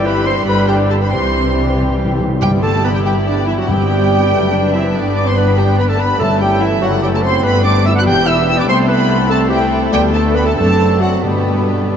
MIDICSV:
0, 0, Header, 1, 9, 480
1, 0, Start_track
1, 0, Key_signature, 1, "major"
1, 0, Tempo, 426136
1, 1262, Time_signature, 6, 3, 24, 8
1, 5102, Tempo, 415512
1, 11342, Tempo, 436999
1, 13578, End_track
2, 0, Start_track
2, 0, Title_t, "Violin section"
2, 0, Program_c, 0, 48
2, 66, Note_on_c, 0, 83, 75
2, 296, Note_off_c, 0, 83, 0
2, 298, Note_on_c, 0, 84, 83
2, 525, Note_on_c, 0, 83, 90
2, 537, Note_off_c, 0, 84, 0
2, 766, Note_off_c, 0, 83, 0
2, 766, Note_on_c, 0, 79, 74
2, 856, Note_off_c, 0, 79, 0
2, 1013, Note_on_c, 0, 81, 70
2, 1063, Note_off_c, 0, 81, 0
2, 1152, Note_on_c, 0, 83, 67
2, 1257, Note_on_c, 0, 84, 71
2, 1265, Note_off_c, 0, 83, 0
2, 1978, Note_off_c, 0, 84, 0
2, 2717, Note_on_c, 0, 79, 93
2, 2807, Note_off_c, 0, 79, 0
2, 2959, Note_on_c, 0, 81, 79
2, 3191, Note_off_c, 0, 81, 0
2, 3204, Note_on_c, 0, 83, 78
2, 3319, Note_off_c, 0, 83, 0
2, 3322, Note_on_c, 0, 79, 66
2, 3368, Note_off_c, 0, 79, 0
2, 3441, Note_on_c, 0, 79, 80
2, 3531, Note_off_c, 0, 79, 0
2, 3671, Note_on_c, 0, 74, 77
2, 3906, Note_off_c, 0, 74, 0
2, 3916, Note_on_c, 0, 76, 74
2, 3963, Note_off_c, 0, 76, 0
2, 4045, Note_on_c, 0, 78, 75
2, 4148, Note_on_c, 0, 79, 90
2, 4155, Note_off_c, 0, 78, 0
2, 5342, Note_off_c, 0, 79, 0
2, 5343, Note_on_c, 0, 76, 73
2, 5580, Note_off_c, 0, 76, 0
2, 5583, Note_on_c, 0, 74, 68
2, 5824, Note_off_c, 0, 74, 0
2, 5829, Note_on_c, 0, 86, 75
2, 5948, Note_off_c, 0, 86, 0
2, 5956, Note_on_c, 0, 84, 72
2, 6064, Note_on_c, 0, 83, 82
2, 6072, Note_off_c, 0, 84, 0
2, 6309, Note_off_c, 0, 83, 0
2, 6309, Note_on_c, 0, 79, 82
2, 6553, Note_off_c, 0, 79, 0
2, 6553, Note_on_c, 0, 83, 87
2, 6601, Note_off_c, 0, 83, 0
2, 6682, Note_on_c, 0, 81, 71
2, 6796, Note_off_c, 0, 81, 0
2, 6800, Note_on_c, 0, 83, 82
2, 7031, Note_on_c, 0, 81, 90
2, 7037, Note_off_c, 0, 83, 0
2, 7271, Note_on_c, 0, 79, 81
2, 7272, Note_off_c, 0, 81, 0
2, 7506, Note_off_c, 0, 79, 0
2, 7514, Note_on_c, 0, 76, 81
2, 7752, Note_on_c, 0, 78, 87
2, 7753, Note_off_c, 0, 76, 0
2, 7991, Note_off_c, 0, 78, 0
2, 7994, Note_on_c, 0, 79, 83
2, 8041, Note_off_c, 0, 79, 0
2, 8120, Note_on_c, 0, 81, 82
2, 8166, Note_off_c, 0, 81, 0
2, 8237, Note_on_c, 0, 84, 84
2, 8466, Note_off_c, 0, 84, 0
2, 8475, Note_on_c, 0, 83, 99
2, 8704, Note_off_c, 0, 83, 0
2, 8713, Note_on_c, 0, 86, 84
2, 8945, Note_off_c, 0, 86, 0
2, 8950, Note_on_c, 0, 88, 82
2, 8998, Note_off_c, 0, 88, 0
2, 9085, Note_on_c, 0, 90, 79
2, 9130, Note_off_c, 0, 90, 0
2, 9201, Note_on_c, 0, 91, 93
2, 9429, Note_off_c, 0, 91, 0
2, 9429, Note_on_c, 0, 88, 92
2, 9658, Note_off_c, 0, 88, 0
2, 9672, Note_on_c, 0, 88, 90
2, 9785, Note_off_c, 0, 88, 0
2, 9799, Note_on_c, 0, 86, 88
2, 9843, Note_off_c, 0, 86, 0
2, 9901, Note_on_c, 0, 84, 108
2, 9993, Note_off_c, 0, 84, 0
2, 10145, Note_on_c, 0, 83, 95
2, 10607, Note_off_c, 0, 83, 0
2, 10615, Note_on_c, 0, 81, 95
2, 10708, Note_off_c, 0, 81, 0
2, 10852, Note_on_c, 0, 79, 81
2, 11091, Note_off_c, 0, 79, 0
2, 11341, Note_on_c, 0, 79, 105
2, 11429, Note_off_c, 0, 79, 0
2, 11567, Note_on_c, 0, 81, 83
2, 11655, Note_off_c, 0, 81, 0
2, 11806, Note_on_c, 0, 83, 84
2, 11923, Note_off_c, 0, 83, 0
2, 11932, Note_on_c, 0, 81, 72
2, 12030, Note_off_c, 0, 81, 0
2, 12043, Note_on_c, 0, 81, 93
2, 12517, Note_off_c, 0, 81, 0
2, 12524, Note_on_c, 0, 78, 72
2, 12764, Note_on_c, 0, 71, 80
2, 12765, Note_off_c, 0, 78, 0
2, 13578, Note_off_c, 0, 71, 0
2, 13578, End_track
3, 0, Start_track
3, 0, Title_t, "Clarinet"
3, 0, Program_c, 1, 71
3, 65, Note_on_c, 1, 71, 70
3, 292, Note_off_c, 1, 71, 0
3, 298, Note_on_c, 1, 72, 70
3, 406, Note_off_c, 1, 72, 0
3, 546, Note_on_c, 1, 71, 79
3, 777, Note_on_c, 1, 67, 65
3, 794, Note_off_c, 1, 71, 0
3, 1027, Note_on_c, 1, 69, 56
3, 1044, Note_off_c, 1, 67, 0
3, 1142, Note_on_c, 1, 71, 54
3, 1159, Note_off_c, 1, 69, 0
3, 1263, Note_off_c, 1, 71, 0
3, 1270, Note_on_c, 1, 72, 56
3, 1984, Note_off_c, 1, 72, 0
3, 2718, Note_on_c, 1, 67, 71
3, 2826, Note_off_c, 1, 67, 0
3, 2955, Note_on_c, 1, 69, 72
3, 3189, Note_off_c, 1, 69, 0
3, 3206, Note_on_c, 1, 71, 71
3, 3257, Note_off_c, 1, 71, 0
3, 3322, Note_on_c, 1, 67, 64
3, 3435, Note_off_c, 1, 67, 0
3, 3449, Note_on_c, 1, 67, 67
3, 3553, Note_off_c, 1, 67, 0
3, 3667, Note_on_c, 1, 62, 64
3, 3911, Note_on_c, 1, 64, 64
3, 3928, Note_off_c, 1, 62, 0
3, 4039, Note_on_c, 1, 66, 63
3, 4056, Note_off_c, 1, 64, 0
3, 4154, Note_off_c, 1, 66, 0
3, 4164, Note_on_c, 1, 67, 72
3, 5357, Note_on_c, 1, 64, 62
3, 5374, Note_off_c, 1, 67, 0
3, 5577, Note_off_c, 1, 64, 0
3, 5584, Note_on_c, 1, 62, 56
3, 5820, Note_off_c, 1, 62, 0
3, 5831, Note_on_c, 1, 74, 69
3, 5959, Note_on_c, 1, 72, 60
3, 5976, Note_off_c, 1, 74, 0
3, 6070, Note_off_c, 1, 72, 0
3, 6077, Note_on_c, 1, 71, 71
3, 6311, Note_on_c, 1, 67, 72
3, 6328, Note_off_c, 1, 71, 0
3, 6543, Note_off_c, 1, 67, 0
3, 6550, Note_on_c, 1, 71, 69
3, 6671, Note_on_c, 1, 69, 59
3, 6689, Note_off_c, 1, 71, 0
3, 6786, Note_on_c, 1, 71, 66
3, 6804, Note_off_c, 1, 69, 0
3, 7018, Note_off_c, 1, 71, 0
3, 7025, Note_on_c, 1, 69, 74
3, 7135, Note_off_c, 1, 69, 0
3, 7273, Note_on_c, 1, 67, 69
3, 7501, Note_off_c, 1, 67, 0
3, 7508, Note_on_c, 1, 64, 70
3, 7739, Note_off_c, 1, 64, 0
3, 7746, Note_on_c, 1, 66, 75
3, 7855, Note_off_c, 1, 66, 0
3, 7979, Note_on_c, 1, 67, 72
3, 8036, Note_off_c, 1, 67, 0
3, 8099, Note_on_c, 1, 69, 65
3, 8220, Note_on_c, 1, 72, 70
3, 8238, Note_off_c, 1, 69, 0
3, 8459, Note_on_c, 1, 71, 77
3, 8476, Note_off_c, 1, 72, 0
3, 8695, Note_off_c, 1, 71, 0
3, 8702, Note_on_c, 1, 74, 79
3, 8939, Note_off_c, 1, 74, 0
3, 8946, Note_on_c, 1, 76, 77
3, 9000, Note_off_c, 1, 76, 0
3, 9059, Note_on_c, 1, 78, 76
3, 9115, Note_off_c, 1, 78, 0
3, 9188, Note_on_c, 1, 79, 87
3, 9419, Note_on_c, 1, 76, 78
3, 9436, Note_off_c, 1, 79, 0
3, 9647, Note_off_c, 1, 76, 0
3, 9654, Note_on_c, 1, 76, 75
3, 9777, Note_on_c, 1, 74, 73
3, 9795, Note_off_c, 1, 76, 0
3, 9899, Note_off_c, 1, 74, 0
3, 9907, Note_on_c, 1, 72, 79
3, 10122, Note_off_c, 1, 72, 0
3, 10129, Note_on_c, 1, 71, 82
3, 10599, Note_off_c, 1, 71, 0
3, 10604, Note_on_c, 1, 69, 82
3, 10834, Note_off_c, 1, 69, 0
3, 10841, Note_on_c, 1, 67, 70
3, 10953, Note_off_c, 1, 67, 0
3, 11342, Note_on_c, 1, 67, 76
3, 11446, Note_off_c, 1, 67, 0
3, 11569, Note_on_c, 1, 69, 75
3, 11799, Note_on_c, 1, 71, 76
3, 11816, Note_off_c, 1, 69, 0
3, 11913, Note_off_c, 1, 71, 0
3, 11920, Note_on_c, 1, 69, 70
3, 11975, Note_off_c, 1, 69, 0
3, 12043, Note_on_c, 1, 69, 79
3, 12524, Note_on_c, 1, 66, 67
3, 12541, Note_off_c, 1, 69, 0
3, 12770, Note_on_c, 1, 59, 58
3, 12786, Note_off_c, 1, 66, 0
3, 13578, Note_off_c, 1, 59, 0
3, 13578, End_track
4, 0, Start_track
4, 0, Title_t, "Violin section"
4, 0, Program_c, 2, 48
4, 0, Note_on_c, 2, 60, 60
4, 0, Note_on_c, 2, 67, 62
4, 488, Note_off_c, 2, 67, 0
4, 490, Note_off_c, 2, 60, 0
4, 530, Note_on_c, 2, 67, 64
4, 531, Note_on_c, 2, 62, 59
4, 1235, Note_off_c, 2, 67, 0
4, 1247, Note_on_c, 2, 60, 52
4, 1249, Note_on_c, 2, 67, 54
4, 1258, Note_off_c, 2, 62, 0
4, 2463, Note_off_c, 2, 67, 0
4, 2487, Note_off_c, 2, 60, 0
4, 2733, Note_on_c, 2, 67, 57
4, 2734, Note_on_c, 2, 64, 62
4, 4110, Note_off_c, 2, 67, 0
4, 4161, Note_on_c, 2, 67, 58
4, 4824, Note_off_c, 2, 64, 0
4, 4856, Note_off_c, 2, 67, 0
4, 4875, Note_on_c, 2, 62, 61
4, 4876, Note_on_c, 2, 71, 61
4, 7041, Note_off_c, 2, 62, 0
4, 7041, Note_off_c, 2, 71, 0
4, 7048, Note_on_c, 2, 61, 61
4, 7049, Note_on_c, 2, 69, 53
4, 7748, Note_off_c, 2, 69, 0
4, 7762, Note_on_c, 2, 69, 63
4, 8445, Note_off_c, 2, 61, 0
4, 8458, Note_off_c, 2, 69, 0
4, 8470, Note_on_c, 2, 62, 61
4, 8476, Note_on_c, 2, 67, 64
4, 9176, Note_off_c, 2, 67, 0
4, 9190, Note_on_c, 2, 67, 64
4, 9875, Note_off_c, 2, 62, 0
4, 9890, Note_off_c, 2, 67, 0
4, 9893, Note_on_c, 2, 64, 62
4, 9896, Note_on_c, 2, 69, 66
4, 10595, Note_off_c, 2, 64, 0
4, 10618, Note_on_c, 2, 64, 68
4, 11328, Note_off_c, 2, 64, 0
4, 11344, Note_on_c, 2, 62, 62
4, 12037, Note_off_c, 2, 62, 0
4, 12051, Note_on_c, 2, 62, 58
4, 12748, Note_off_c, 2, 62, 0
4, 12761, Note_on_c, 2, 62, 52
4, 12768, Note_on_c, 2, 67, 57
4, 12769, Note_off_c, 2, 69, 0
4, 13578, Note_off_c, 2, 62, 0
4, 13578, Note_off_c, 2, 67, 0
4, 13578, End_track
5, 0, Start_track
5, 0, Title_t, "Viola section"
5, 0, Program_c, 3, 48
5, 0, Note_on_c, 3, 52, 66
5, 0, Note_on_c, 3, 55, 63
5, 488, Note_off_c, 3, 52, 0
5, 489, Note_off_c, 3, 55, 0
5, 530, Note_on_c, 3, 55, 65
5, 532, Note_on_c, 3, 50, 60
5, 1244, Note_off_c, 3, 55, 0
5, 1256, Note_on_c, 3, 55, 55
5, 1257, Note_on_c, 3, 52, 53
5, 1259, Note_off_c, 3, 50, 0
5, 2466, Note_off_c, 3, 55, 0
5, 2467, Note_off_c, 3, 52, 0
5, 2721, Note_on_c, 3, 55, 60
5, 2721, Note_on_c, 3, 59, 58
5, 3388, Note_off_c, 3, 55, 0
5, 3388, Note_off_c, 3, 59, 0
5, 3431, Note_on_c, 3, 59, 56
5, 3434, Note_off_c, 3, 59, 0
5, 3434, Note_on_c, 3, 59, 58
5, 4136, Note_off_c, 3, 59, 0
5, 4150, Note_on_c, 3, 59, 59
5, 4150, Note_on_c, 3, 60, 59
5, 4850, Note_off_c, 3, 59, 0
5, 4850, Note_off_c, 3, 60, 0
5, 4863, Note_on_c, 3, 62, 57
5, 4865, Note_on_c, 3, 57, 64
5, 5086, Note_off_c, 3, 62, 0
5, 5099, Note_on_c, 3, 62, 62
5, 5102, Note_off_c, 3, 57, 0
5, 5337, Note_on_c, 3, 60, 64
5, 5343, Note_off_c, 3, 62, 0
5, 5582, Note_off_c, 3, 60, 0
5, 5583, Note_on_c, 3, 59, 63
5, 7005, Note_off_c, 3, 59, 0
5, 7028, Note_on_c, 3, 57, 64
5, 7030, Note_on_c, 3, 64, 64
5, 8436, Note_off_c, 3, 64, 0
5, 8468, Note_on_c, 3, 59, 63
5, 9140, Note_off_c, 3, 57, 0
5, 9166, Note_off_c, 3, 59, 0
5, 9179, Note_on_c, 3, 59, 67
5, 9894, Note_on_c, 3, 57, 69
5, 10582, Note_off_c, 3, 59, 0
5, 10596, Note_off_c, 3, 57, 0
5, 10609, Note_on_c, 3, 57, 71
5, 10610, Note_on_c, 3, 60, 64
5, 11338, Note_off_c, 3, 60, 0
5, 11338, Note_on_c, 3, 59, 63
5, 12016, Note_off_c, 3, 57, 0
5, 12045, Note_off_c, 3, 59, 0
5, 12048, Note_on_c, 3, 57, 62
5, 12049, Note_on_c, 3, 60, 58
5, 12767, Note_on_c, 3, 55, 54
5, 12767, Note_on_c, 3, 59, 53
5, 12773, Note_off_c, 3, 57, 0
5, 12774, Note_off_c, 3, 60, 0
5, 13437, Note_off_c, 3, 55, 0
5, 13450, Note_off_c, 3, 59, 0
5, 13494, Note_on_c, 3, 55, 62
5, 13578, Note_off_c, 3, 55, 0
5, 13578, End_track
6, 0, Start_track
6, 0, Title_t, "French horn section"
6, 0, Program_c, 4, 60
6, 0, Note_on_c, 4, 55, 81
6, 0, Note_on_c, 4, 64, 67
6, 494, Note_off_c, 4, 64, 0
6, 533, Note_on_c, 4, 62, 65
6, 1215, Note_off_c, 4, 62, 0
6, 1253, Note_on_c, 4, 64, 54
6, 2432, Note_off_c, 4, 64, 0
6, 2437, Note_off_c, 4, 55, 0
6, 2712, Note_on_c, 4, 55, 76
6, 2938, Note_off_c, 4, 55, 0
6, 2951, Note_on_c, 4, 57, 68
6, 3178, Note_on_c, 4, 59, 66
6, 3187, Note_off_c, 4, 57, 0
6, 3291, Note_on_c, 4, 55, 62
6, 3303, Note_off_c, 4, 59, 0
6, 3349, Note_off_c, 4, 55, 0
6, 3412, Note_on_c, 4, 55, 69
6, 3525, Note_off_c, 4, 55, 0
6, 3659, Note_on_c, 4, 50, 61
6, 3900, Note_off_c, 4, 50, 0
6, 3906, Note_on_c, 4, 52, 60
6, 4026, Note_off_c, 4, 52, 0
6, 4030, Note_on_c, 4, 54, 65
6, 4140, Note_on_c, 4, 55, 80
6, 4147, Note_off_c, 4, 54, 0
6, 5332, Note_on_c, 4, 52, 62
6, 5339, Note_off_c, 4, 55, 0
6, 5574, Note_off_c, 4, 52, 0
6, 5584, Note_on_c, 4, 50, 61
6, 5820, Note_off_c, 4, 50, 0
6, 5825, Note_on_c, 4, 62, 71
6, 5933, Note_on_c, 4, 60, 67
6, 5943, Note_off_c, 4, 62, 0
6, 6061, Note_off_c, 4, 60, 0
6, 6066, Note_on_c, 4, 59, 72
6, 6301, Note_on_c, 4, 55, 73
6, 6310, Note_off_c, 4, 59, 0
6, 6544, Note_off_c, 4, 55, 0
6, 6551, Note_on_c, 4, 59, 63
6, 6669, Note_on_c, 4, 57, 62
6, 6671, Note_off_c, 4, 59, 0
6, 6781, Note_on_c, 4, 59, 71
6, 6790, Note_off_c, 4, 57, 0
6, 7022, Note_on_c, 4, 57, 84
6, 7028, Note_off_c, 4, 59, 0
6, 7267, Note_off_c, 4, 57, 0
6, 7268, Note_on_c, 4, 55, 74
6, 7510, Note_off_c, 4, 55, 0
6, 7512, Note_on_c, 4, 52, 68
6, 7747, Note_off_c, 4, 52, 0
6, 7748, Note_on_c, 4, 54, 80
6, 7989, Note_off_c, 4, 54, 0
6, 8002, Note_on_c, 4, 55, 66
6, 8100, Note_on_c, 4, 57, 71
6, 8116, Note_off_c, 4, 55, 0
6, 8225, Note_off_c, 4, 57, 0
6, 8234, Note_on_c, 4, 60, 73
6, 8464, Note_off_c, 4, 60, 0
6, 8472, Note_on_c, 4, 59, 82
6, 8699, Note_on_c, 4, 62, 84
6, 8707, Note_off_c, 4, 59, 0
6, 8942, Note_off_c, 4, 62, 0
6, 8954, Note_on_c, 4, 64, 77
6, 9007, Note_off_c, 4, 64, 0
6, 9085, Note_on_c, 4, 66, 71
6, 9186, Note_on_c, 4, 67, 87
6, 9194, Note_off_c, 4, 66, 0
6, 9415, Note_on_c, 4, 64, 73
6, 9421, Note_off_c, 4, 67, 0
6, 9525, Note_off_c, 4, 64, 0
6, 9673, Note_on_c, 4, 64, 74
6, 9785, Note_off_c, 4, 64, 0
6, 9799, Note_on_c, 4, 62, 71
6, 9849, Note_off_c, 4, 62, 0
6, 9911, Note_on_c, 4, 60, 91
6, 10140, Note_off_c, 4, 60, 0
6, 10155, Note_on_c, 4, 59, 90
6, 10617, Note_on_c, 4, 57, 80
6, 10622, Note_off_c, 4, 59, 0
6, 10855, Note_off_c, 4, 57, 0
6, 10859, Note_on_c, 4, 55, 62
6, 10967, Note_off_c, 4, 55, 0
6, 11332, Note_on_c, 4, 55, 90
6, 11553, Note_off_c, 4, 55, 0
6, 11564, Note_on_c, 4, 57, 89
6, 11804, Note_off_c, 4, 57, 0
6, 11808, Note_on_c, 4, 59, 72
6, 11916, Note_on_c, 4, 57, 65
6, 11927, Note_off_c, 4, 59, 0
6, 12027, Note_off_c, 4, 57, 0
6, 12040, Note_on_c, 4, 57, 77
6, 12513, Note_on_c, 4, 54, 65
6, 12516, Note_off_c, 4, 57, 0
6, 12765, Note_off_c, 4, 54, 0
6, 12765, Note_on_c, 4, 47, 64
6, 13578, Note_off_c, 4, 47, 0
6, 13578, End_track
7, 0, Start_track
7, 0, Title_t, "Timpani"
7, 0, Program_c, 5, 47
7, 1348, Note_on_c, 5, 48, 30
7, 1430, Note_off_c, 5, 48, 0
7, 1442, Note_on_c, 5, 48, 36
7, 1515, Note_off_c, 5, 48, 0
7, 1528, Note_on_c, 5, 48, 36
7, 1599, Note_off_c, 5, 48, 0
7, 1613, Note_on_c, 5, 48, 39
7, 1691, Note_off_c, 5, 48, 0
7, 1781, Note_on_c, 5, 48, 44
7, 1861, Note_off_c, 5, 48, 0
7, 1874, Note_on_c, 5, 48, 43
7, 1954, Note_off_c, 5, 48, 0
7, 1966, Note_on_c, 5, 48, 48
7, 2043, Note_off_c, 5, 48, 0
7, 2055, Note_on_c, 5, 48, 55
7, 2123, Note_off_c, 5, 48, 0
7, 2136, Note_on_c, 5, 48, 55
7, 2210, Note_off_c, 5, 48, 0
7, 2224, Note_on_c, 5, 48, 65
7, 2292, Note_off_c, 5, 48, 0
7, 2305, Note_on_c, 5, 48, 72
7, 2380, Note_off_c, 5, 48, 0
7, 2393, Note_on_c, 5, 48, 68
7, 2468, Note_off_c, 5, 48, 0
7, 2482, Note_on_c, 5, 48, 77
7, 2553, Note_off_c, 5, 48, 0
7, 2566, Note_on_c, 5, 48, 77
7, 2646, Note_off_c, 5, 48, 0
7, 2729, Note_on_c, 5, 43, 83
7, 3392, Note_off_c, 5, 43, 0
7, 4152, Note_on_c, 5, 43, 80
7, 4820, Note_off_c, 5, 43, 0
7, 7037, Note_on_c, 5, 43, 82
7, 7707, Note_off_c, 5, 43, 0
7, 12769, Note_on_c, 5, 43, 68
7, 13455, Note_off_c, 5, 43, 0
7, 13578, End_track
8, 0, Start_track
8, 0, Title_t, "Cello section"
8, 0, Program_c, 6, 48
8, 0, Note_on_c, 6, 43, 69
8, 492, Note_off_c, 6, 43, 0
8, 534, Note_on_c, 6, 43, 61
8, 1246, Note_off_c, 6, 43, 0
8, 1256, Note_on_c, 6, 48, 57
8, 2491, Note_off_c, 6, 48, 0
8, 2714, Note_on_c, 6, 43, 64
8, 4100, Note_off_c, 6, 43, 0
8, 4146, Note_on_c, 6, 43, 62
8, 4848, Note_off_c, 6, 43, 0
8, 4861, Note_on_c, 6, 42, 67
8, 5583, Note_off_c, 6, 42, 0
8, 5583, Note_on_c, 6, 43, 63
8, 7017, Note_off_c, 6, 43, 0
8, 7031, Note_on_c, 6, 43, 67
8, 7735, Note_off_c, 6, 43, 0
8, 7749, Note_on_c, 6, 42, 63
8, 8466, Note_off_c, 6, 42, 0
8, 8466, Note_on_c, 6, 43, 70
8, 9172, Note_off_c, 6, 43, 0
8, 9181, Note_on_c, 6, 40, 71
8, 9899, Note_off_c, 6, 40, 0
8, 9901, Note_on_c, 6, 36, 75
8, 11311, Note_off_c, 6, 36, 0
8, 11335, Note_on_c, 6, 38, 71
8, 12042, Note_on_c, 6, 42, 65
8, 12044, Note_off_c, 6, 38, 0
8, 12769, Note_on_c, 6, 43, 63
8, 12770, Note_off_c, 6, 42, 0
8, 13578, Note_off_c, 6, 43, 0
8, 13578, End_track
9, 0, Start_track
9, 0, Title_t, "Double bass section"
9, 0, Program_c, 7, 48
9, 0, Note_on_c, 7, 31, 66
9, 490, Note_off_c, 7, 31, 0
9, 535, Note_on_c, 7, 31, 60
9, 1246, Note_off_c, 7, 31, 0
9, 1256, Note_on_c, 7, 36, 56
9, 2491, Note_off_c, 7, 36, 0
9, 2721, Note_on_c, 7, 31, 65
9, 4104, Note_off_c, 7, 31, 0
9, 4144, Note_on_c, 7, 31, 61
9, 4847, Note_off_c, 7, 31, 0
9, 4865, Note_on_c, 7, 30, 58
9, 5585, Note_off_c, 7, 30, 0
9, 5590, Note_on_c, 7, 31, 64
9, 7024, Note_off_c, 7, 31, 0
9, 7038, Note_on_c, 7, 31, 65
9, 7739, Note_off_c, 7, 31, 0
9, 7756, Note_on_c, 7, 30, 64
9, 8468, Note_on_c, 7, 31, 69
9, 8469, Note_off_c, 7, 30, 0
9, 9173, Note_off_c, 7, 31, 0
9, 9193, Note_on_c, 7, 28, 69
9, 9904, Note_on_c, 7, 36, 72
9, 9905, Note_off_c, 7, 28, 0
9, 11313, Note_off_c, 7, 36, 0
9, 11346, Note_on_c, 7, 38, 69
9, 12046, Note_on_c, 7, 30, 64
9, 12049, Note_off_c, 7, 38, 0
9, 12772, Note_off_c, 7, 30, 0
9, 12774, Note_on_c, 7, 31, 56
9, 13578, Note_off_c, 7, 31, 0
9, 13578, End_track
0, 0, End_of_file